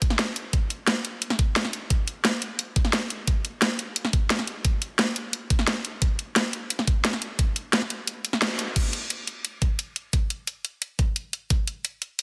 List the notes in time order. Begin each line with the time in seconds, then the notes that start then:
0.02 kick, closed hi-hat
0.10 snare
0.19 snare, closed hi-hat
0.36 closed hi-hat
0.53 kick, closed hi-hat
0.70 closed hi-hat
0.87 snare, closed hi-hat
1.05 closed hi-hat
1.22 closed hi-hat
1.30 snare
1.39 kick, closed hi-hat
1.56 snare, closed hi-hat
1.65 snare
1.73 closed hi-hat
1.90 kick, closed hi-hat
2.08 closed hi-hat
2.25 snare, closed hi-hat
2.42 closed hi-hat
2.59 closed hi-hat
2.76 kick, closed hi-hat
2.85 snare
2.93 snare, closed hi-hat
3.10 closed hi-hat
3.27 kick, closed hi-hat
3.45 closed hi-hat
3.62 snare, closed hi-hat
3.79 closed hi-hat
3.96 closed hi-hat
4.05 snare
4.13 kick, closed hi-hat
4.30 snare, closed hi-hat
4.39 snare
4.47 closed hi-hat
4.65 kick, closed hi-hat
4.82 closed hi-hat
4.99 snare, closed hi-hat
5.16 closed hi-hat
5.33 closed hi-hat
5.50 kick, closed hi-hat
5.59 snare
5.67 snare, closed hi-hat
5.85 closed hi-hat
6.02 kick, closed hi-hat
6.19 closed hi-hat
6.36 snare, closed hi-hat
6.53 closed hi-hat
6.70 closed hi-hat
6.79 snare
6.87 kick, closed hi-hat
7.05 snare, closed hi-hat
7.13 snare
7.22 closed hi-hat
7.39 kick, closed hi-hat
7.56 closed hi-hat
7.73 snare, closed hi-hat
7.82 snare
7.90 closed hi-hat
8.07 closed hi-hat
8.25 closed hi-hat
8.33 snare
8.42 snare, closed hi-hat
8.59 closed hi-hat
8.76 kick, closed hi-hat, crash
8.93 closed hi-hat
9.10 closed hi-hat
9.27 closed hi-hat
9.45 closed hi-hat
9.62 kick, closed hi-hat
9.79 closed hi-hat
9.96 closed hi-hat
10.13 kick, closed hi-hat
10.30 closed hi-hat
10.47 closed hi-hat
10.65 closed hi-hat
10.82 closed hi-hat
10.99 kick, closed hi-hat
11.16 closed hi-hat
11.33 closed hi-hat
11.50 kick, closed hi-hat
11.67 closed hi-hat
11.85 closed hi-hat
12.02 closed hi-hat
12.19 closed hi-hat